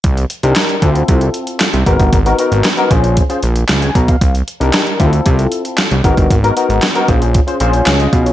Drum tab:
HH |xxxxxxxxxxxxxxxx|xxxxxxxxxxxxxxxx|xxxxxxxxxxxxxxxx|xxxxxxxxxxxxxxxx|
CP |----x-------x---|----x-------x---|----x-------x---|----x-------x---|
SD |----o-------o---|----o-------o---|----o-------o---|----o-------o---|
BD |o-----o-o-----oo|o-----o-o-----oo|o-----o-o-----oo|o-----o-o-----o-|